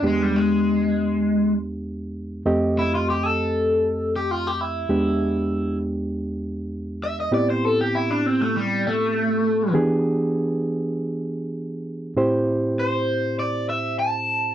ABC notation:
X:1
M:4/4
L:1/16
Q:1/4=99
K:Am
V:1 name="Overdriven electric guitar"
^G, =G, ^G,8 z6 | z2 E F G A6 G F G E2- | E6 z8 e ^d | d c A G E D C A, G,2 A,6 |
z16 | z4 c4 d2 e2 a4 |]
V:2 name="Reed electric piano"
[E,,^G,B,D=G]16 | [F,,A,CG_e]16 | [E,,^G,B,D=G]16 | [A,,B,CEG]16 |
[E,B,DG^G]16 | [A,,CEGc]16 |]